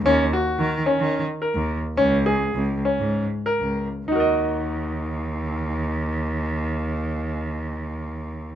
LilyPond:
<<
  \new Staff \with { instrumentName = "Grand piano" } { \time 7/8 \key ees \minor \tempo 4 = 93 des'8 ges'4 des'4 bes'4 | des'8 aes'4 des'4 bes'4 | <ees' ges' bes' ees''>2.~ <ees' ges' bes' ees''>8~ | <ees' ges' bes' ees''>2.~ <ees' ges' bes' ees''>8 | }
  \new Staff \with { instrumentName = "Cello" } { \clef bass \time 7/8 \key ees \minor ees,8 r8 ees8 r16 ees8 r8 ees,8 r16 | des,4 des,8 r16 aes,8 r8 des,8 r16 | ees,2.~ ees,8~ | ees,2.~ ees,8 | }
>>